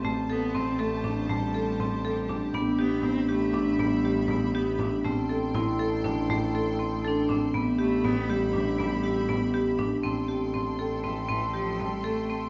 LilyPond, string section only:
\new Staff \with { instrumentName = "String section" } { \time 5/8 \key a \minor \tempo 4 = 120 << { <c'' a''>2~ <c'' a''>8~ | <c'' a''>2~ <c'' a''>8 | <e'' b''>2~ <e'' b''>8~ | <e'' b''>2~ <e'' b''>8 |
<g'' c'''>2~ <g'' c'''>8~ | <g'' c'''>2~ <g'' c'''>8 | <e'' b''>2~ <e'' b''>8~ | <e'' b''>2~ <e'' b''>8 |
<g'' c'''>2~ <g'' c'''>8~ | <g'' c'''>2~ <g'' c'''>8 | } \\ { g'2~ g'8~ | g'2~ g'8~ | g'2~ g'8~ | g'2~ g'8 |
a'2~ a'8~ | a'2~ a'8 | g'2~ g'8~ | g'2~ g'8 |
a'2~ a'8~ | a'2~ a'8 | } >> }